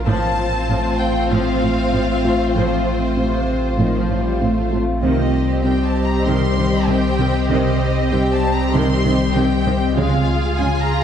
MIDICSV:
0, 0, Header, 1, 8, 480
1, 0, Start_track
1, 0, Tempo, 618557
1, 60, Time_signature, 4, 2, 24, 8
1, 8565, End_track
2, 0, Start_track
2, 0, Title_t, "Violin section"
2, 0, Program_c, 0, 48
2, 51, Note_on_c, 0, 81, 81
2, 745, Note_off_c, 0, 81, 0
2, 772, Note_on_c, 0, 79, 68
2, 1015, Note_on_c, 0, 77, 71
2, 1016, Note_off_c, 0, 79, 0
2, 1958, Note_off_c, 0, 77, 0
2, 1973, Note_on_c, 0, 72, 53
2, 3388, Note_off_c, 0, 72, 0
2, 3898, Note_on_c, 0, 75, 53
2, 4348, Note_off_c, 0, 75, 0
2, 4375, Note_on_c, 0, 79, 54
2, 4534, Note_off_c, 0, 79, 0
2, 4541, Note_on_c, 0, 81, 58
2, 4699, Note_on_c, 0, 82, 57
2, 4701, Note_off_c, 0, 81, 0
2, 4853, Note_on_c, 0, 84, 66
2, 4859, Note_off_c, 0, 82, 0
2, 5335, Note_on_c, 0, 79, 68
2, 5336, Note_off_c, 0, 84, 0
2, 5817, Note_off_c, 0, 79, 0
2, 5818, Note_on_c, 0, 75, 64
2, 6289, Note_off_c, 0, 75, 0
2, 6296, Note_on_c, 0, 79, 66
2, 6458, Note_off_c, 0, 79, 0
2, 6465, Note_on_c, 0, 81, 70
2, 6622, Note_off_c, 0, 81, 0
2, 6622, Note_on_c, 0, 82, 66
2, 6780, Note_on_c, 0, 84, 77
2, 6781, Note_off_c, 0, 82, 0
2, 7258, Note_on_c, 0, 79, 78
2, 7260, Note_off_c, 0, 84, 0
2, 7739, Note_off_c, 0, 79, 0
2, 7739, Note_on_c, 0, 77, 75
2, 8210, Note_off_c, 0, 77, 0
2, 8222, Note_on_c, 0, 80, 73
2, 8381, Note_off_c, 0, 80, 0
2, 8389, Note_on_c, 0, 82, 73
2, 8544, Note_off_c, 0, 82, 0
2, 8565, End_track
3, 0, Start_track
3, 0, Title_t, "Violin section"
3, 0, Program_c, 1, 48
3, 64, Note_on_c, 1, 72, 52
3, 65, Note_on_c, 1, 65, 57
3, 3716, Note_off_c, 1, 65, 0
3, 3716, Note_off_c, 1, 72, 0
3, 3906, Note_on_c, 1, 67, 46
3, 3909, Note_on_c, 1, 72, 43
3, 7712, Note_off_c, 1, 67, 0
3, 7713, Note_off_c, 1, 72, 0
3, 7736, Note_on_c, 1, 68, 62
3, 7737, Note_on_c, 1, 65, 62
3, 8565, Note_off_c, 1, 65, 0
3, 8565, Note_off_c, 1, 68, 0
3, 8565, End_track
4, 0, Start_track
4, 0, Title_t, "Analog synth pad"
4, 0, Program_c, 2, 89
4, 59, Note_on_c, 2, 65, 60
4, 60, Note_on_c, 2, 57, 62
4, 60, Note_on_c, 2, 77, 58
4, 61, Note_on_c, 2, 60, 56
4, 3869, Note_off_c, 2, 65, 0
4, 3869, Note_off_c, 2, 77, 0
4, 3891, Note_off_c, 2, 60, 0
4, 3896, Note_on_c, 2, 75, 57
4, 3899, Note_on_c, 2, 55, 59
4, 3900, Note_off_c, 2, 57, 0
4, 3900, Note_on_c, 2, 60, 58
4, 3900, Note_on_c, 2, 67, 58
4, 7709, Note_off_c, 2, 60, 0
4, 7738, Note_off_c, 2, 75, 0
4, 7739, Note_on_c, 2, 56, 62
4, 7739, Note_on_c, 2, 65, 62
4, 7739, Note_on_c, 2, 77, 60
4, 7740, Note_off_c, 2, 55, 0
4, 7740, Note_off_c, 2, 67, 0
4, 7740, Note_on_c, 2, 49, 63
4, 8565, Note_off_c, 2, 49, 0
4, 8565, Note_off_c, 2, 56, 0
4, 8565, Note_off_c, 2, 65, 0
4, 8565, Note_off_c, 2, 77, 0
4, 8565, End_track
5, 0, Start_track
5, 0, Title_t, "Synth pluck"
5, 0, Program_c, 3, 84
5, 66, Note_on_c, 3, 53, 72
5, 208, Note_off_c, 3, 53, 0
5, 542, Note_on_c, 3, 60, 55
5, 685, Note_off_c, 3, 60, 0
5, 1022, Note_on_c, 3, 53, 71
5, 1165, Note_off_c, 3, 53, 0
5, 1263, Note_on_c, 3, 57, 51
5, 1406, Note_off_c, 3, 57, 0
5, 1502, Note_on_c, 3, 60, 47
5, 1646, Note_off_c, 3, 60, 0
5, 1746, Note_on_c, 3, 65, 47
5, 1888, Note_off_c, 3, 65, 0
5, 1982, Note_on_c, 3, 53, 69
5, 2125, Note_off_c, 3, 53, 0
5, 2460, Note_on_c, 3, 60, 51
5, 2604, Note_off_c, 3, 60, 0
5, 2942, Note_on_c, 3, 53, 67
5, 3086, Note_off_c, 3, 53, 0
5, 3183, Note_on_c, 3, 57, 50
5, 3326, Note_off_c, 3, 57, 0
5, 3424, Note_on_c, 3, 60, 48
5, 3567, Note_off_c, 3, 60, 0
5, 3667, Note_on_c, 3, 65, 49
5, 3809, Note_off_c, 3, 65, 0
5, 3907, Note_on_c, 3, 48, 71
5, 4049, Note_off_c, 3, 48, 0
5, 4385, Note_on_c, 3, 55, 47
5, 4528, Note_off_c, 3, 55, 0
5, 4871, Note_on_c, 3, 48, 64
5, 5012, Note_off_c, 3, 48, 0
5, 5110, Note_on_c, 3, 51, 53
5, 5251, Note_off_c, 3, 51, 0
5, 5348, Note_on_c, 3, 55, 46
5, 5489, Note_off_c, 3, 55, 0
5, 5591, Note_on_c, 3, 60, 51
5, 5732, Note_off_c, 3, 60, 0
5, 5832, Note_on_c, 3, 48, 75
5, 5972, Note_off_c, 3, 48, 0
5, 6312, Note_on_c, 3, 55, 52
5, 6452, Note_off_c, 3, 55, 0
5, 6792, Note_on_c, 3, 48, 73
5, 6932, Note_off_c, 3, 48, 0
5, 7028, Note_on_c, 3, 51, 53
5, 7170, Note_off_c, 3, 51, 0
5, 7268, Note_on_c, 3, 55, 51
5, 7410, Note_off_c, 3, 55, 0
5, 7503, Note_on_c, 3, 60, 55
5, 7646, Note_off_c, 3, 60, 0
5, 7740, Note_on_c, 3, 49, 78
5, 7884, Note_off_c, 3, 49, 0
5, 8224, Note_on_c, 3, 56, 54
5, 8367, Note_off_c, 3, 56, 0
5, 8565, End_track
6, 0, Start_track
6, 0, Title_t, "Viola section"
6, 0, Program_c, 4, 48
6, 57, Note_on_c, 4, 53, 63
6, 57, Note_on_c, 4, 60, 54
6, 282, Note_off_c, 4, 53, 0
6, 539, Note_on_c, 4, 53, 41
6, 601, Note_off_c, 4, 53, 0
6, 1021, Note_on_c, 4, 53, 52
6, 1244, Note_off_c, 4, 53, 0
6, 1262, Note_on_c, 4, 53, 38
6, 1324, Note_off_c, 4, 53, 0
6, 1500, Note_on_c, 4, 53, 38
6, 1562, Note_off_c, 4, 53, 0
6, 1740, Note_on_c, 4, 53, 37
6, 1802, Note_off_c, 4, 53, 0
6, 1983, Note_on_c, 4, 53, 45
6, 2205, Note_off_c, 4, 53, 0
6, 2380, Note_off_c, 4, 60, 0
6, 2464, Note_on_c, 4, 48, 44
6, 2911, Note_off_c, 4, 48, 0
6, 2939, Note_on_c, 4, 51, 50
6, 3099, Note_off_c, 4, 51, 0
6, 3104, Note_on_c, 4, 53, 41
6, 3262, Note_off_c, 4, 53, 0
6, 3267, Note_on_c, 4, 55, 45
6, 3422, Note_on_c, 4, 57, 45
6, 3424, Note_off_c, 4, 55, 0
6, 3901, Note_off_c, 4, 57, 0
6, 3904, Note_on_c, 4, 51, 51
6, 3904, Note_on_c, 4, 60, 47
6, 4125, Note_off_c, 4, 51, 0
6, 4385, Note_on_c, 4, 51, 33
6, 4447, Note_off_c, 4, 51, 0
6, 4865, Note_on_c, 4, 51, 43
6, 5086, Note_off_c, 4, 51, 0
6, 5104, Note_on_c, 4, 51, 35
6, 5166, Note_off_c, 4, 51, 0
6, 5343, Note_on_c, 4, 51, 39
6, 5405, Note_off_c, 4, 51, 0
6, 5582, Note_on_c, 4, 51, 44
6, 5644, Note_off_c, 4, 51, 0
6, 5820, Note_on_c, 4, 51, 53
6, 6043, Note_off_c, 4, 51, 0
6, 6303, Note_on_c, 4, 51, 36
6, 6365, Note_off_c, 4, 51, 0
6, 6780, Note_on_c, 4, 51, 56
6, 7003, Note_off_c, 4, 51, 0
6, 7018, Note_on_c, 4, 51, 48
6, 7080, Note_off_c, 4, 51, 0
6, 7257, Note_on_c, 4, 51, 52
6, 7319, Note_off_c, 4, 51, 0
6, 7497, Note_on_c, 4, 51, 54
6, 7559, Note_off_c, 4, 51, 0
6, 7711, Note_off_c, 4, 60, 0
6, 7734, Note_on_c, 4, 65, 60
6, 7736, Note_on_c, 4, 56, 64
6, 7961, Note_off_c, 4, 56, 0
6, 8221, Note_on_c, 4, 56, 40
6, 8283, Note_off_c, 4, 56, 0
6, 8565, Note_off_c, 4, 65, 0
6, 8565, End_track
7, 0, Start_track
7, 0, Title_t, "Cello section"
7, 0, Program_c, 5, 48
7, 56, Note_on_c, 5, 45, 61
7, 119, Note_off_c, 5, 45, 0
7, 538, Note_on_c, 5, 45, 44
7, 600, Note_off_c, 5, 45, 0
7, 1019, Note_on_c, 5, 45, 55
7, 1081, Note_off_c, 5, 45, 0
7, 1260, Note_on_c, 5, 45, 38
7, 1322, Note_off_c, 5, 45, 0
7, 1501, Note_on_c, 5, 45, 35
7, 1563, Note_off_c, 5, 45, 0
7, 1741, Note_on_c, 5, 45, 32
7, 1803, Note_off_c, 5, 45, 0
7, 1982, Note_on_c, 5, 45, 47
7, 2044, Note_off_c, 5, 45, 0
7, 2461, Note_on_c, 5, 45, 31
7, 2523, Note_off_c, 5, 45, 0
7, 2937, Note_on_c, 5, 45, 45
7, 2999, Note_off_c, 5, 45, 0
7, 3178, Note_on_c, 5, 45, 32
7, 3240, Note_off_c, 5, 45, 0
7, 3419, Note_on_c, 5, 45, 33
7, 3481, Note_off_c, 5, 45, 0
7, 3660, Note_on_c, 5, 45, 31
7, 3722, Note_off_c, 5, 45, 0
7, 3900, Note_on_c, 5, 48, 52
7, 3962, Note_off_c, 5, 48, 0
7, 4380, Note_on_c, 5, 48, 37
7, 4442, Note_off_c, 5, 48, 0
7, 4860, Note_on_c, 5, 48, 51
7, 4922, Note_off_c, 5, 48, 0
7, 5101, Note_on_c, 5, 48, 37
7, 5164, Note_off_c, 5, 48, 0
7, 5342, Note_on_c, 5, 48, 38
7, 5404, Note_off_c, 5, 48, 0
7, 5582, Note_on_c, 5, 48, 39
7, 5644, Note_off_c, 5, 48, 0
7, 5823, Note_on_c, 5, 48, 57
7, 5885, Note_off_c, 5, 48, 0
7, 6303, Note_on_c, 5, 48, 41
7, 6365, Note_off_c, 5, 48, 0
7, 6784, Note_on_c, 5, 48, 62
7, 6846, Note_off_c, 5, 48, 0
7, 7023, Note_on_c, 5, 48, 46
7, 7085, Note_off_c, 5, 48, 0
7, 7260, Note_on_c, 5, 48, 44
7, 7322, Note_off_c, 5, 48, 0
7, 7500, Note_on_c, 5, 48, 44
7, 7562, Note_off_c, 5, 48, 0
7, 7739, Note_on_c, 5, 49, 63
7, 7801, Note_off_c, 5, 49, 0
7, 8218, Note_on_c, 5, 49, 44
7, 8281, Note_off_c, 5, 49, 0
7, 8565, End_track
8, 0, Start_track
8, 0, Title_t, "Sub bass"
8, 0, Program_c, 6, 38
8, 56, Note_on_c, 6, 33, 58
8, 3901, Note_on_c, 6, 36, 55
8, 3913, Note_off_c, 6, 33, 0
8, 7740, Note_on_c, 6, 37, 61
8, 7752, Note_off_c, 6, 36, 0
8, 8565, Note_off_c, 6, 37, 0
8, 8565, End_track
0, 0, End_of_file